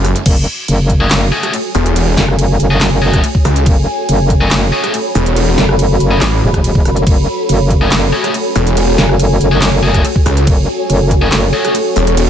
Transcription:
Already playing: detuned saw bass F#1, supersaw synth C#3 F#3 G#3 A3 C#4
0.05 cross-stick, open hi-hat
0.16 closed hi-hat
0.26 wobble bass F#1, ambient pad F#4, kick, closed hi-hat, crash
0.59 ambient pad A4
0.68 wobble bass F#1, closed hi-hat, crash
0.82 ambient pad C#5
0.90 ambient pad G#5, kick, closed hi-hat
1.01 distorted electric guitar A3 C#4 F#4 G#4
1.11 wobble bass F#1, snare, clap, closed hi-hat, crash
1.32 distorted electric guitar A3 C#4 F#4 G#4
1.43 cross-stick, closed hi-hat
1.54 closed hi-hat, crash
1.75 detuned saw bass E1, open hi-hat
1.86 closed hi-hat
1.96 closed hi-hat, crash
2.17 wobble bass F#1, snare
2.28 cross-stick
2.39 closed hi-hat, crash
2.60 wobble bass F#1, closed hi-hat
2.71 distorted electric guitar A3 C#4 F#4 G#4
2.81 snare, clap, closed hi-hat, crash
3.02 distorted electric guitar A3 C#4 F#4 G#4
3.13 kick, cross-stick, closed hi-hat
3.24 closed hi-hat, crash
3.35 kick
3.45 detuned saw bass C#2, cross-stick, open hi-hat
3.56 closed hi-hat
3.66 wobble bass F#1, kick, closed hi-hat, crash
4.09 wobble bass F#1, closed hi-hat, crash
4.30 ambient pad B5, kick, closed hi-hat
4.41 distorted electric guitar A3 C#4 F#4 G#4
4.51 wobble bass F#1, snare, clap, closed hi-hat, crash
4.72 distorted electric guitar A3 C#4 F#4 G#4
4.84 cross-stick, closed hi-hat
4.94 closed hi-hat, crash
5.15 detuned saw bass E1, open hi-hat
5.26 closed hi-hat
5.36 closed hi-hat, crash
5.58 wobble bass F#1, snare
5.69 cross-stick
5.79 closed hi-hat, crash
6.00 wobble bass F#1, closed hi-hat
6.11 distorted electric guitar A3 C#4 F#4 G#4
6.22 detuned saw bass A1, snare, clap, closed hi-hat, crash
6.43 wobble bass E1
6.54 kick, cross-stick, closed hi-hat
6.64 closed hi-hat, crash
6.75 kick
6.85 wobble bass F#1, cross-stick, open hi-hat
6.96 closed hi-hat
7.07 wobble bass F#1, kick, closed hi-hat, crash
7.49 wobble bass F#1, closed hi-hat, crash
7.71 ambient pad G#5, kick, closed hi-hat
7.81 distorted electric guitar A3 C#4 F#4 G#4
7.92 wobble bass F#1, snare, clap, closed hi-hat, crash
8.13 distorted electric guitar A3 C#4 F#4 G#4
8.24 cross-stick, closed hi-hat
8.34 closed hi-hat, crash
8.56 detuned saw bass E1, open hi-hat
8.67 closed hi-hat
8.77 closed hi-hat, crash
8.98 wobble bass F#1, snare
9.09 cross-stick
9.20 closed hi-hat, crash
9.41 wobble bass F#1, closed hi-hat
9.52 distorted electric guitar A3 C#4 F#4 G#4
9.62 snare, clap, closed hi-hat, crash
9.83 distorted electric guitar A3 C#4 F#4 G#4
9.94 kick, cross-stick, closed hi-hat
10.05 closed hi-hat, crash
10.16 kick
10.26 detuned saw bass C#2, cross-stick, open hi-hat
10.37 closed hi-hat
10.47 wobble bass F#1, kick, closed hi-hat, crash
10.90 wobble bass F#1, closed hi-hat, crash
11.11 ambient pad C#6, kick, closed hi-hat
11.22 distorted electric guitar A3 C#4 F#4 G#4
11.32 wobble bass F#1, snare, clap, closed hi-hat, crash
11.53 distorted electric guitar A3 C#4 F#4 G#4
11.65 cross-stick, closed hi-hat
11.75 closed hi-hat, crash
11.96 detuned saw bass E1, open hi-hat
12.07 closed hi-hat
12.17 closed hi-hat, crash

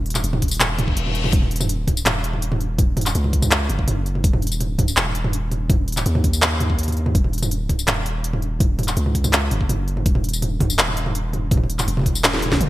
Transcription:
Already playing: 808-style bass D#1
0.06 closed hi-hat
0.10 closed hi-hat
0.15 clap, mid tom, tambourine
0.24 808-style bass D#1, closed hi-hat
0.33 mid tom
0.42 kick, closed hi-hat
0.48 closed hi-hat, tambourine
0.54 closed hi-hat
0.60 clap, closed hi-hat, mid tom, reverse cymbal
0.79 closed hi-hat, mid tom
0.88 kick
0.97 808-style bass D#1, closed hi-hat
1.06 mid tom
1.15 closed hi-hat
1.24 mid tom
1.33 808-style bass D#1, kick, closed hi-hat
1.42 mid tom
1.51 closed hi-hat
1.56 closed hi-hat
1.61 mid tom, tambourine
1.69 closed hi-hat
1.88 kick, closed hi-hat, mid tom
1.97 tambourine
2.06 808-style bass D#1, clap, closed hi-hat, mid tom
2.24 closed hi-hat
2.33 mid tom
2.42 closed hi-hat
2.52 mid tom
2.61 closed hi-hat
2.79 kick, closed hi-hat, mid tom
2.97 closed hi-hat, mid tom
3.01 closed hi-hat
3.06 clap, tambourine
3.15 808-style bass C#2, closed hi-hat
3.24 mid tom
3.33 kick, closed hi-hat
3.42 mid tom, tambourine
3.51 clap, closed hi-hat
3.69 808-style bass F#1, closed hi-hat, mid tom
3.79 kick
3.88 closed hi-hat, mid tom
4.06 closed hi-hat
4.15 mid tom
4.24 808-style bass D#1, kick, closed hi-hat
4.33 mid tom
4.42 closed hi-hat
4.47 closed hi-hat
4.52 tambourine
4.61 closed hi-hat, mid tom
4.79 kick, closed hi-hat, mid tom
4.88 tambourine
4.97 808-style bass D#1, clap, closed hi-hat
5.06 mid tom
5.15 closed hi-hat
5.24 mid tom
5.33 closed hi-hat
5.51 closed hi-hat, mid tom
5.70 kick, closed hi-hat, mid tom
5.88 closed hi-hat
5.92 closed hi-hat
5.97 clap, mid tom, tambourine
6.06 808-style bass D#2, closed hi-hat
6.15 mid tom
6.24 kick, closed hi-hat
6.33 tambourine
6.42 clap, closed hi-hat, mid tom
6.60 closed hi-hat, mid tom
6.70 kick
6.79 closed hi-hat
6.83 closed hi-hat
6.88 closed hi-hat, mid tom
6.92 closed hi-hat
6.97 closed hi-hat
7.06 mid tom
7.15 808-style bass D#1, kick, closed hi-hat
7.24 mid tom
7.33 closed hi-hat
7.38 closed hi-hat
7.43 mid tom, tambourine
7.51 closed hi-hat
7.69 kick, closed hi-hat, mid tom
7.79 tambourine
7.88 808-style bass D#1, clap, closed hi-hat, mid tom
8.06 closed hi-hat
8.24 closed hi-hat
8.33 mid tom
8.42 closed hi-hat
8.60 kick, closed hi-hat, mid tom
8.79 closed hi-hat, mid tom
8.83 closed hi-hat
8.88 clap, tambourine
8.97 808-style bass C#2, closed hi-hat
9.06 mid tom
9.15 kick, closed hi-hat
9.24 mid tom, tambourine
9.33 clap, closed hi-hat
9.51 808-style bass F#1, closed hi-hat, mid tom
9.61 kick
9.69 closed hi-hat, mid tom
9.88 closed hi-hat
9.97 mid tom
10.06 808-style bass D#1, kick, closed hi-hat
10.15 mid tom
10.24 closed hi-hat
10.29 closed hi-hat
10.33 tambourine
10.42 closed hi-hat, mid tom
10.56 808-style bass D1
10.60 kick, closed hi-hat, mid tom
10.70 tambourine
10.79 808-style bass D#1, clap, closed hi-hat
10.88 mid tom
10.97 closed hi-hat
11.06 mid tom
11.15 closed hi-hat
11.33 closed hi-hat, mid tom
11.51 kick, closed hi-hat, mid tom
11.57 mid tom
11.64 mid tom
11.70 closed hi-hat
11.79 clap, mid tom, tambourine
11.88 808-style bass D#1, closed hi-hat
11.97 mid tom
11.99 mid tom
12.02 mid tom
12.04 kick, closed hi-hat, mid tom
12.06 mid tom
12.08 mid tom
12.11 mid tom
12.13 mid tom, tambourine
12.24 snare, clap, closed hi-hat, mid tom
12.33 snare
12.36 snare
12.38 snare
12.40 snare
12.42 snare, closed hi-hat, mid tom
12.45 snare, mid tom
12.47 snare, mid tom
12.49 kick, snare
12.52 snare, mid tom
12.55 mid tom
12.58 808-style bass D#1, closed hi-hat, mid tom
12.61 mid tom

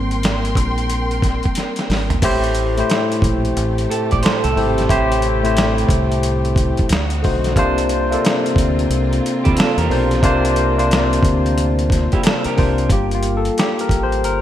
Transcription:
Already playing: fingered electric bass G#1, tine electric piano G3 A#3 C4, string section A#4 G5 C6
0.11 closed hi-hat
0.23 snare, closed hi-hat
0.45 closed hi-hat
0.55 fingered electric bass A#1, kick, closed hi-hat
0.78 closed hi-hat
0.90 closed hi-hat
1.11 closed hi-hat
1.22 kick, snare, closed hi-hat
1.43 kick, closed hi-hat
1.55 snare, closed hi-hat
1.76 snare, closed hi-hat
1.90 fingered electric bass G#1, snare, open hi-hat
2.10 closed hi-hat, floor tom
2.22 fingered electric bass A1, tine electric piano A2 A3 E4 G4 C5, string section C3 A3 G4, kick, closed hi-hat, crash
2.44 closed hi-hat
2.55 closed hi-hat
2.77 tine electric piano A2 A3 E4 G4 C5, closed hi-hat
2.90 snare, closed hi-hat
3.12 closed hi-hat
3.22 fingered electric bass A#1, kick, closed hi-hat
3.45 closed hi-hat
3.57 fingered electric bass A1, closed hi-hat
3.78 closed hi-hat
3.90 clean electric guitar A4, closed hi-hat
4.11 fingered electric bass A#1, clean electric guitar D5, kick, closed hi-hat
4.23 clean electric guitar A4 C5, snare, closed hi-hat
4.44 fingered electric bass C2, clean electric guitar A4, closed hi-hat
4.55 fingered electric bass G#1, tine electric piano C3 A3 E4 G4 C5, open hi-hat
4.78 snare, closed hi-hat
4.88 fingered electric bass A1, tine electric piano A2 A3 E4 G4 C5, kick, closed hi-hat
5.12 closed hi-hat
5.22 closed hi-hat
5.43 tine electric piano A2 A3 E4 G4 C5, closed hi-hat
5.57 snare, closed hi-hat
5.78 closed hi-hat
5.89 fingered electric bass C2, kick, closed hi-hat
6.12 closed hi-hat
6.23 closed hi-hat
6.45 closed hi-hat
6.56 kick, closed hi-hat
6.77 kick, closed hi-hat
6.89 fingered electric bass D2, string section C4 D#4 F#4, snare, closed hi-hat
7.10 closed hi-hat
7.22 fingered electric bass B1, tine electric piano D3 A3 D#4 F#4 C5, kick, open hi-hat
7.44 snare, closed hi-hat
7.56 fingered electric bass C2, tine electric piano C3 A#3 D4 F4 C5, string section A#3 C4 F4, kick, closed hi-hat
7.78 closed hi-hat
7.89 closed hi-hat
8.10 tine electric piano C3 A#3 D4 F4 A4, closed hi-hat
8.25 snare, closed hi-hat
8.46 closed hi-hat
8.56 fingered electric bass D2, kick, closed hi-hat
8.79 closed hi-hat
8.90 fingered electric bass C2, closed hi-hat
9.13 closed hi-hat
9.26 closed hi-hat
9.44 fingered electric bass D2, clean electric guitar E4 G4, kick, closed hi-hat
9.57 clean electric guitar F4 A4, snare, closed hi-hat
9.78 fingered electric bass E2, clean electric guitar G4 A#4, closed hi-hat
9.89 fingered electric bass B1, tine electric piano A#3 C4 D4 F4 C5, open hi-hat
10.11 snare, closed hi-hat
10.22 fingered electric bass C2, tine electric piano C3 A#3 D4 F4 C5, kick, closed hi-hat
10.45 closed hi-hat
10.56 closed hi-hat
10.77 tine electric piano C3 A#3 D4 F4 C5, closed hi-hat
10.91 snare, closed hi-hat
11.13 closed hi-hat
11.23 fingered electric bass D2, kick, closed hi-hat
11.46 closed hi-hat
11.58 closed hi-hat
11.79 closed hi-hat
11.90 kick, snare, closed hi-hat
12.12 clean electric guitar E4 G4, kick, closed hi-hat
12.23 clean electric guitar F4 A4, snare, closed hi-hat
12.44 clean electric guitar G4 A#4, muted fingered electric bass stroke, closed hi-hat
12.56 fingered electric bass C2, tine electric piano C3 A#3 D4 F4 C5, kick, open hi-hat
12.78 closed hi-hat
12.90 fingered electric bass G1, tine electric piano G3 A#3 F4 G4, kick, closed hi-hat
13.11 tine electric piano F4, closed hi-hat
13.23 closed hi-hat
13.37 tine electric piano A4
13.45 closed hi-hat
13.58 tine electric piano G4, snare, closed hi-hat
13.79 tine electric piano A#4, closed hi-hat
13.89 fingered electric bass A1, kick, closed hi-hat
14.03 tine electric piano C5
14.12 closed hi-hat
14.24 fingered electric bass G1, tine electric piano A#4, closed hi-hat

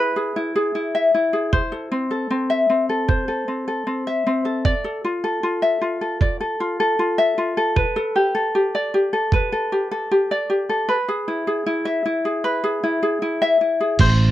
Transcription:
Already playing: ukulele E4 G#4 B4 E5
0.16 ukulele G#4
0.36 ukulele E4
0.56 ukulele G#4
0.75 ukulele E4
0.95 ukulele E5
1.15 ukulele E4
1.33 ukulele G#4
1.53 ukulele C5, kick
1.72 ukulele A4
1.92 ukulele C4
2.11 ukulele A4
2.31 ukulele C4
2.50 ukulele E5
2.70 ukulele C4
2.89 ukulele A4
3.08 ukulele C5, kick
3.28 ukulele A4
3.48 ukulele C4
3.68 ukulele A4
3.87 ukulele C4
4.07 ukulele E5
4.27 ukulele C4
4.45 ukulele A4
4.65 ukulele D5, kick
4.84 ukulele A4
5.05 ukulele F4
5.24 ukulele A4
5.43 ukulele F4
5.62 ukulele E5
5.81 ukulele F4
6.01 ukulele A4
6.21 ukulele D5, kick
6.41 ukulele A4
6.60 ukulele F4
6.80 ukulele A4
6.99 ukulele F4
7.18 ukulele E5
7.38 ukulele F4
7.57 ukulele A4
7.76 ukulele B4, kick
7.96 ukulele A4
8.16 ukulele G4
8.35 ukulele A4
8.55 ukulele G4
8.75 ukulele D5
8.94 ukulele G4
9.13 ukulele A4
9.32 ukulele B4, kick
9.52 ukulele A4
9.72 ukulele G4
9.91 ukulele A4
10.11 ukulele G4
10.31 ukulele D5
10.50 ukulele G4
10.69 ukulele A4
10.89 ukulele B4
11.09 ukulele G#4
11.28 ukulele E4
11.47 ukulele G#4
11.66 ukulele E4
11.85 ukulele E5
12.06 ukulele E4
12.25 ukulele G#4
12.44 ukulele B4
12.64 ukulele G#4
12.84 ukulele E4
13.03 ukulele G#4
13.22 ukulele E4
13.42 ukulele E5
13.61 ukulele E4
13.81 ukulele G#4
13.99 fingered electric bass A1, ukulele C5, kick, crash

